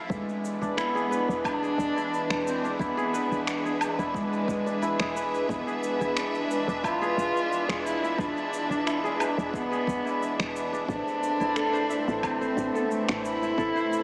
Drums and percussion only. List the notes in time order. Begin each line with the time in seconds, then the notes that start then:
0.10 kick, shaker
0.29 shaker
0.45 shaker
0.63 shaker
0.78 finger snap, shaker
0.97 shaker
1.13 shaker
1.30 shaker
1.45 kick, low woodblock, shaker
1.64 shaker
1.78 kick, shaker
1.98 shaker
2.14 shaker
2.30 finger snap, shaker
2.47 shaker
2.65 shaker
2.79 kick, shaker
2.98 shaker
3.15 shaker
3.32 shaker
3.47 finger snap, shaker
3.66 shaker
3.81 low woodblock, shaker
3.99 shaker
4.14 kick, shaker
4.33 shaker
4.48 kick, shaker
4.67 shaker
4.83 shaker
5.00 finger snap, shaker
5.17 shaker
5.34 shaker
5.49 kick, shaker
5.68 shaker
5.83 shaker
6.01 shaker
6.17 finger snap, shaker
6.35 shaker
6.51 shaker
6.69 shaker
6.84 kick, low woodblock, shaker
7.03 shaker
7.17 kick, shaker
7.37 shaker
7.52 shaker
7.69 finger snap, shaker
7.87 shaker
8.04 shaker
8.18 kick, shaker
8.37 shaker
8.53 shaker
8.72 shaker
8.87 finger snap, shaker
9.05 shaker
9.20 low woodblock, shaker
9.39 shaker
9.54 kick, shaker
9.73 shaker
9.87 kick, shaker
10.07 shaker
10.23 shaker
10.40 finger snap, shaker
10.56 shaker
10.74 shaker
10.88 kick, shaker
11.08 shaker
11.23 shaker
11.41 shaker
11.56 finger snap, shaker
11.75 shaker
11.91 shaker
12.08 shaker
12.23 kick, low woodblock, shaker
12.42 shaker
12.57 kick, shaker
12.76 shaker
12.91 shaker
13.09 finger snap, shaker
13.25 shaker
13.43 shaker
13.58 kick, shaker
13.77 shaker
13.93 shaker